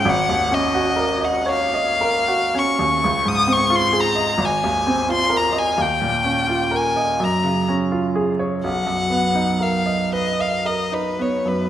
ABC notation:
X:1
M:6/8
L:1/16
Q:3/8=42
K:Ab
V:1 name="Violin"
_g2 e3 g f4 d'2- | d' e' d' c' b2 a3 c' b a | g4 a2 b2 z4 | ^f4 =f2 ^d f d =B _d B |]
V:2 name="Grand piano"
A,,, E,, D _G B e d e B G D E,, | D,, A,, C F A e A,,, E,, C F B e | E,, B,, D F B e _G,, D, D F A d | =B,,, ^F,, =B, ^D ^A ^d =B d A D B, F,, |]